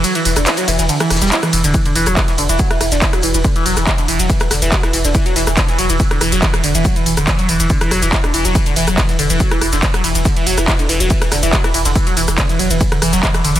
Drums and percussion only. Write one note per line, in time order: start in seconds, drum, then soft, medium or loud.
0.04 closed hi-hat medium
0.04 ride medium
0.04 shaker medium
0.15 ride medium
0.15 shaker soft
0.25 open hi-hat loud
0.25 ride medium
0.25 shaker medium
0.36 cross-stick medium
0.36 closed hi-hat soft
0.36 closed hi-hat medium
0.36 ride medium
0.36 shaker medium
0.46 snare loud
0.46 clap loud
0.46 closed hi-hat medium
0.46 ride medium
0.46 shaker medium
0.57 closed hi-hat soft
0.57 ride medium
0.57 shaker soft
0.68 snare loud
0.68 open hi-hat loud
0.68 ride medium
0.68 shaker medium
0.79 snare soft
0.79 closed hi-hat medium
0.79 ride medium
0.79 shaker medium
0.89 closed hi-hat medium
0.89 ride medium
0.89 shaker medium
1.00 cross-stick medium
1.00 ride medium
1.00 shaker soft
1.10 cross-stick medium
1.10 snare medium
1.10 open hi-hat loud
1.10 ride medium
1.10 shaker medium
1.16 snare medium
1.16 shaker medium
1.22 snare loud
1.22 closed hi-hat medium
1.22 ride medium
1.22 shaker medium
1.26 snare medium
1.26 shaker medium
1.32 snare loud
1.32 clap loud
1.32 closed hi-hat medium
1.32 ride medium
1.32 shaker medium
1.43 cross-stick medium
1.43 ride medium
1.43 shaker soft
1.53 open hi-hat loud
1.53 ride medium
1.53 shaker medium
1.64 snare soft
1.64 closed hi-hat medium
1.64 ride medium
1.64 shaker medium
1.74 kick loud
1.74 closed hi-hat medium
1.74 ride medium
1.74 shaker medium
1.85 closed hi-hat soft
1.85 ride medium
1.85 shaker soft
1.95 snare soft
1.95 open hi-hat loud
1.95 ride medium
1.95 shaker medium
2.06 cross-stick medium
2.06 closed hi-hat soft
2.06 closed hi-hat medium
2.06 ride medium
2.06 shaker medium
2.17 kick loud
2.17 snare loud
2.17 clap loud
2.17 closed hi-hat medium
2.17 ride medium
2.17 shaker medium
2.28 snare medium
2.28 ride medium
2.28 shaker soft
2.38 open hi-hat loud
2.38 ride medium
2.38 shaker medium
2.49 closed hi-hat medium
2.49 ride medium
2.49 shaker medium
2.59 kick loud
2.59 closed hi-hat medium
2.59 ride medium
2.59 shaker medium
2.71 cross-stick medium
2.71 ride medium
2.71 shaker soft
2.81 cross-stick medium
2.81 open hi-hat loud
2.81 ride medium
2.81 shaker medium
2.92 snare medium
2.92 closed hi-hat medium
2.92 ride medium
2.92 shaker medium
3.02 kick loud
3.02 snare loud
3.02 clap loud
3.02 closed hi-hat medium
3.02 ride medium
3.02 shaker medium
3.02 shaker loud
3.13 cross-stick medium
3.13 closed hi-hat soft
3.13 ride medium
3.13 shaker soft
3.22 open hi-hat loud
3.22 ride medium
3.22 shaker medium
3.34 closed hi-hat medium
3.34 ride medium
3.34 shaker medium
3.44 kick loud
3.44 closed hi-hat medium
3.44 ride medium
3.44 shaker medium
3.56 ride medium
3.56 shaker soft
3.66 open hi-hat loud
3.66 ride medium
3.66 shaker medium
3.77 cross-stick medium
3.77 closed hi-hat medium
3.77 closed hi-hat soft
3.77 ride medium
3.77 shaker medium
3.87 kick loud
3.87 snare loud
3.87 clap loud
3.87 closed hi-hat medium
3.87 ride medium
3.87 shaker medium
3.98 closed hi-hat soft
3.98 ride medium
3.98 shaker soft
4.08 open hi-hat loud
4.08 ride medium
4.08 shaker medium
4.20 closed hi-hat medium
4.20 ride medium
4.20 shaker medium
4.30 kick loud
4.30 closed hi-hat medium
4.30 ride medium
4.30 shaker medium
4.40 cross-stick loud
4.40 closed hi-hat soft
4.40 ride medium
4.40 shaker soft
4.50 cross-stick medium
4.50 snare soft
4.50 open hi-hat loud
4.50 ride medium
4.50 shaker medium
4.62 snare soft
4.62 closed hi-hat medium
4.62 ride medium
4.62 shaker medium
4.72 kick loud
4.72 snare loud
4.72 clap loud
4.72 closed hi-hat medium
4.72 ride medium
4.72 shaker medium
4.83 cross-stick medium
4.83 ride medium
4.83 shaker soft
4.93 open hi-hat loud
4.93 ride medium
4.93 shaker medium
5.05 snare soft
5.05 closed hi-hat medium
5.05 ride medium
5.05 shaker medium
5.15 kick loud
5.15 closed hi-hat medium
5.15 ride medium
5.15 shaker medium
5.26 closed hi-hat soft
5.26 ride medium
5.26 shaker soft
5.36 snare soft
5.36 open hi-hat loud
5.36 ride medium
5.36 shaker medium
5.47 cross-stick loud
5.47 closed hi-hat medium
5.47 closed hi-hat soft
5.47 ride medium
5.47 shaker medium
5.57 kick loud
5.57 snare loud
5.57 clap loud
5.57 closed hi-hat medium
5.57 ride medium
5.57 shaker medium
5.68 snare medium
5.68 ride medium
5.68 shaker soft
5.79 open hi-hat loud
5.79 ride medium
5.79 shaker medium
5.90 closed hi-hat medium
5.90 ride medium
5.90 shaker medium
6.00 kick loud
6.00 closed hi-hat medium
6.00 ride medium
6.00 shaker medium
6.11 cross-stick medium
6.11 ride medium
6.11 shaker soft
6.21 cross-stick medium
6.21 open hi-hat loud
6.21 ride medium
6.21 shaker medium
6.32 snare medium
6.32 closed hi-hat medium
6.32 ride medium
6.32 shaker medium
6.42 kick loud
6.42 snare loud
6.42 clap loud
6.42 closed hi-hat medium
6.42 ride medium
6.42 shaker medium
6.54 cross-stick loud
6.54 closed hi-hat soft
6.54 ride medium
6.54 shaker soft
6.63 open hi-hat loud
6.63 ride medium
6.63 shaker medium
6.75 closed hi-hat medium
6.75 ride medium
6.75 shaker medium
6.85 kick loud
6.85 closed hi-hat medium
6.85 ride medium
6.85 shaker medium
6.96 ride medium
6.96 shaker soft
7.06 open hi-hat loud
7.06 ride medium
7.06 shaker medium
7.17 cross-stick loud
7.17 closed hi-hat soft
7.17 closed hi-hat medium
7.17 ride medium
7.17 shaker medium
7.27 kick loud
7.27 snare loud
7.27 clap loud
7.27 closed hi-hat medium
7.27 ride medium
7.27 shaker medium
7.39 closed hi-hat soft
7.39 ride medium
7.39 shaker soft
7.49 open hi-hat loud
7.49 ride medium
7.60 closed hi-hat medium
7.60 ride medium
7.60 shaker medium
7.70 kick loud
7.70 closed hi-hat medium
7.70 ride medium
7.70 shaker medium
7.81 cross-stick loud
7.81 closed hi-hat soft
7.81 ride medium
7.81 shaker soft
7.91 cross-stick medium
7.91 snare soft
7.91 open hi-hat loud
7.91 ride medium
7.91 shaker medium
8.02 snare soft
8.02 closed hi-hat medium
8.02 ride medium
8.02 shaker medium
8.13 kick loud
8.13 snare loud
8.13 clap loud
8.13 closed hi-hat medium
8.13 ride medium
8.13 shaker medium
8.24 cross-stick loud
8.24 ride medium
8.24 shaker soft
8.34 open hi-hat loud
8.34 ride medium
8.34 shaker medium
8.45 snare soft
8.45 closed hi-hat medium
8.45 ride medium
8.45 shaker medium
8.55 kick loud
8.55 closed hi-hat medium
8.55 ride medium
8.55 shaker medium
8.66 closed hi-hat soft
8.66 ride medium
8.66 shaker soft
8.76 snare soft
8.76 open hi-hat loud
8.76 ride medium
8.76 shaker medium
8.88 cross-stick loud
8.88 closed hi-hat medium
8.88 closed hi-hat soft
8.88 ride medium
8.88 shaker medium
8.98 kick loud
8.98 snare loud
8.98 clap loud
8.98 closed hi-hat medium
8.98 ride medium
8.98 shaker medium
9.09 snare medium
9.09 ride medium
9.09 shaker soft
9.19 open hi-hat loud
9.19 ride medium
9.19 shaker medium
9.30 closed hi-hat medium
9.30 ride medium
9.30 shaker medium
9.40 kick loud
9.40 closed hi-hat medium
9.40 ride medium
9.40 shaker medium
9.51 cross-stick loud
9.51 ride medium
9.51 shaker soft
9.61 cross-stick medium
9.61 open hi-hat loud
9.61 ride medium
9.61 shaker medium
9.73 snare medium
9.73 closed hi-hat medium
9.73 ride medium
9.73 shaker medium
9.83 kick loud
9.83 snare loud
9.83 clap loud
9.83 closed hi-hat medium
9.83 ride medium
9.83 shaker medium
9.94 cross-stick loud
9.94 closed hi-hat soft
9.94 ride medium
9.94 shaker soft
10.04 open hi-hat loud
10.04 ride medium
10.04 shaker medium
10.15 closed hi-hat medium
10.15 ride medium
10.15 shaker medium
10.25 kick loud
10.25 closed hi-hat medium
10.25 ride medium
10.25 shaker medium
10.36 ride medium
10.36 shaker soft
10.47 open hi-hat loud
10.47 ride medium
10.47 shaker medium
10.57 cross-stick loud
10.57 closed hi-hat soft
10.57 closed hi-hat medium
10.57 ride medium
10.57 shaker medium
10.68 kick loud
10.68 snare loud
10.68 clap loud
10.68 closed hi-hat medium
10.68 ride medium
10.68 shaker medium
10.79 closed hi-hat soft
10.79 ride medium
10.79 shaker soft
10.89 open hi-hat loud
10.89 ride medium
10.89 shaker medium
11.00 closed hi-hat medium
11.00 ride medium
11.00 shaker medium
11.10 kick loud
11.10 closed hi-hat medium
11.10 ride medium
11.10 shaker medium
11.22 cross-stick medium
11.22 closed hi-hat soft
11.22 ride medium
11.22 shaker soft
11.31 cross-stick medium
11.31 snare medium
11.31 open hi-hat loud
11.31 ride medium
11.31 shaker medium
11.43 snare soft
11.43 closed hi-hat medium
11.43 ride medium
11.43 shaker medium
11.53 kick loud
11.53 snare loud
11.53 clap loud
11.53 closed hi-hat medium
11.53 ride medium
11.53 shaker medium
11.64 cross-stick loud
11.64 ride medium
11.64 shaker soft
11.74 open hi-hat loud
11.74 ride medium
11.74 shaker medium
11.85 snare soft
11.85 closed hi-hat medium
11.85 ride medium
11.85 shaker medium
11.96 kick loud
11.96 closed hi-hat medium
11.96 ride medium
11.96 shaker medium
11.96 shaker loud
12.07 closed hi-hat soft
12.07 ride medium
12.07 shaker soft
12.16 snare soft
12.16 open hi-hat loud
12.16 ride medium
12.16 shaker medium
12.28 cross-stick medium
12.28 closed hi-hat medium
12.28 closed hi-hat soft
12.28 ride medium
12.28 shaker medium
12.37 kick loud
12.37 snare loud
12.37 clap loud
12.37 closed hi-hat medium
12.37 ride medium
12.37 shaker medium
12.49 snare soft
12.49 ride medium
12.49 shaker soft
12.59 open hi-hat loud
12.59 ride medium
12.59 shaker medium
12.71 closed hi-hat medium
12.71 ride medium
12.71 shaker medium
12.81 kick loud
12.81 closed hi-hat medium
12.81 ride medium
12.81 shaker medium
12.92 cross-stick medium
12.92 ride medium
12.92 shaker soft
13.02 cross-stick medium
13.02 open hi-hat loud
13.02 ride medium
13.02 shaker medium
13.13 snare medium
13.13 closed hi-hat medium
13.13 ride medium
13.13 shaker medium
13.23 kick loud
13.23 snare loud
13.23 clap loud
13.23 closed hi-hat medium
13.23 ride medium
13.23 shaker loud
13.23 shaker medium
13.34 cross-stick medium
13.34 closed hi-hat soft
13.34 ride medium
13.34 shaker soft
13.44 open hi-hat loud
13.44 ride medium
13.44 shaker medium
13.56 closed hi-hat medium
13.56 ride medium
13.56 shaker medium